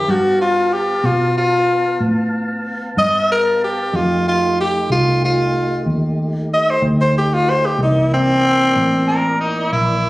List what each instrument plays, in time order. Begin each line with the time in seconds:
Already playing: tenor saxophone G4
0.08 fingered electric bass G2, tonewheel organ B3 F5 A5, tenor saxophone F#4
0.41 tenor saxophone F4
0.73 tenor saxophone G4
1.04 fingered electric bass B2, tenor saxophone F4
1.38 tenor saxophone F4
2.00 fingered electric bass A2
2.97 fingered electric bass G2, tenor saxophone D#5
3.32 tenor saxophone A#4
3.64 tenor saxophone G4
3.93 fingered electric bass F2, tonewheel organ A3 D#4 G4, tenor saxophone F4
4.28 tenor saxophone F4
4.60 tenor saxophone G4
4.90 fingered electric bass C2, tenor saxophone F4
5.25 tenor saxophone F4
5.86 fingered electric bass D#2
6.54 tenor saxophone D#5
6.70 tenor saxophone C5
6.82 fingered electric bass D2
7.01 tenor saxophone C5
7.18 tenor saxophone G4
7.34 tenor saxophone F4
7.50 tenor saxophone C5
7.66 tenor saxophone G4
7.78 fingered electric bass C2, tonewheel organ E3 A#3 D5
7.83 tenor saxophone D#4
8.14 tenor saxophone C4
8.76 fingered electric bass A1
9.08 harmonica A#4
9.40 harmonica D#4
9.72 fingered electric bass A#1, harmonica E4